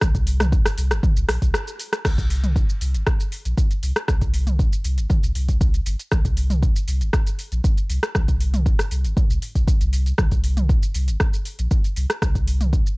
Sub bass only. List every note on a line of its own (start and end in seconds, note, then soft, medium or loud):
0.02 0.59 C2 loud
0.78 0.93 C2 loud
0.91 1.00 G1 medium
1.17 1.25 C2 medium
1.29 1.38 A#1 medium
1.42 1.54 C2 medium
2.05 2.63 C2 loud
2.81 2.96 C2 medium
2.94 3.03 G1 medium
3.45 3.54 A#1 loud
3.83 3.92 C2 loud
4.08 4.66 C2 loud
4.84 4.99 C2 loud
4.98 5.06 G1 medium
5.23 5.32 C2 medium
5.35 5.80 C2 medium
5.86 5.95 G1 loud
6.12 6.69 C2 loud
6.88 7.03 C2 loud
7.01 7.10 G1 medium
7.52 7.60 A#1 loud
7.89 7.99 C2 loud
8.15 8.73 C2 loud
8.91 9.06 C2 loud
9.05 9.13 G1 medium
9.30 9.38 C2 medium
9.55 9.64 C2 medium
9.81 10.13 C2 loud
10.18 10.76 C2 loud
10.95 11.10 C2 medium
11.08 11.17 G1 medium
11.59 11.67 A#1 loud
11.97 12.06 C2 loud
12.22 12.80 C2 loud